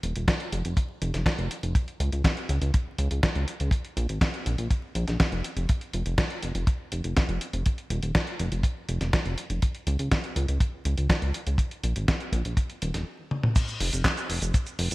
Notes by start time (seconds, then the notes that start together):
0.03 D#1, closed hi-hat
0.16 D#1, closed hi-hat
0.28 kick, snare, closed hi-hat
0.40 closed hi-hat
0.53 F1, closed hi-hat
0.65 F1, closed hi-hat
0.77 kick, closed hi-hat
1.02 F1, closed hi-hat
1.14 F1, snare, closed hi-hat
1.26 kick, snare, closed hi-hat
1.39 F1, closed hi-hat
1.51 closed hi-hat
1.63 F1, closed hi-hat
1.75 kick, closed hi-hat
1.88 closed hi-hat
2.00 C#2, closed hi-hat
2.12 C#2, closed hi-hat
2.24 kick, snare, closed hi-hat
2.37 closed hi-hat
2.49 C#2, closed hi-hat
2.62 C#2, closed hi-hat
2.74 kick, closed hi-hat
2.98 C#2, closed hi-hat
3.11 C#2, closed hi-hat
3.23 kick, snare, closed hi-hat
3.35 C#2, closed hi-hat
3.48 closed hi-hat
3.60 C#2, closed hi-hat
3.71 kick, closed hi-hat
3.85 closed hi-hat
3.97 A#1, closed hi-hat
4.09 G#1, closed hi-hat
4.21 kick, snare, closed hi-hat
4.34 closed hi-hat
4.46 A#1, closed hi-hat
4.58 A#1, closed hi-hat
4.71 kick, closed hi-hat
4.95 A#1, closed hi-hat
5.07 A#1, snare, closed hi-hat
5.20 kick, snare, closed hi-hat
5.32 F1, closed hi-hat
5.44 closed hi-hat
5.57 F1, closed hi-hat
5.69 kick, closed hi-hat
5.81 closed hi-hat
5.93 F1, closed hi-hat
6.06 F1, closed hi-hat
6.18 kick, snare, closed hi-hat
6.30 closed hi-hat
6.43 F1, closed hi-hat
6.55 F1, closed hi-hat
6.67 kick, closed hi-hat
6.92 F1, closed hi-hat
7.04 F1, closed hi-hat
7.17 kick, snare, closed hi-hat
7.29 F1, closed hi-hat
7.41 closed hi-hat
7.53 F1, closed hi-hat
7.66 kick, closed hi-hat
7.78 closed hi-hat
7.90 D#1, closed hi-hat
8.03 D#1, closed hi-hat
8.15 kick, snare, closed hi-hat
8.27 closed hi-hat
8.39 F1, closed hi-hat
8.52 F1, closed hi-hat
8.63 kick, closed hi-hat
8.89 F1, closed hi-hat
9.01 F1, snare, closed hi-hat
9.13 kick, snare, closed hi-hat
9.25 F1, closed hi-hat
9.38 closed hi-hat
9.50 F1, closed hi-hat
9.62 kick, closed hi-hat
9.75 closed hi-hat
9.87 C#2, closed hi-hat
9.99 C#2, closed hi-hat
10.11 kick, snare, closed hi-hat
10.24 closed hi-hat
10.36 C#2, closed hi-hat
10.48 C#2, closed hi-hat
10.60 kick, closed hi-hat
10.85 C#2, closed hi-hat
10.98 C#2, closed hi-hat
11.10 kick, snare, closed hi-hat
11.22 C#2, closed hi-hat
11.34 closed hi-hat
11.47 C#2, closed hi-hat
11.58 kick, closed hi-hat
11.71 closed hi-hat
11.84 A#1, closed hi-hat
11.96 G#1, closed hi-hat
12.08 kick, snare, closed hi-hat
12.20 closed hi-hat
12.32 A#1, kick, closed hi-hat
12.45 A#1, closed hi-hat
12.57 kick, closed hi-hat
12.70 closed hi-hat
12.82 D#1, closed hi-hat
12.94 D#1, snare, closed hi-hat
13.31 high tom
13.43 mid tom
13.56 kick, closed hi-hat, crash, cabasa
13.68 cabasa
13.80 F1, open hi-hat
13.93 F1, closed hi-hat, cabasa
14.04 kick, snare, clap, closed hi-hat, cabasa
14.17 closed hi-hat, cabasa
14.30 F1, open hi-hat
14.42 F1, closed hi-hat, cabasa
14.54 kick, closed hi-hat, cabasa
14.67 closed hi-hat, cabasa
14.79 F1, open hi-hat
14.91 F1, closed hi-hat, cabasa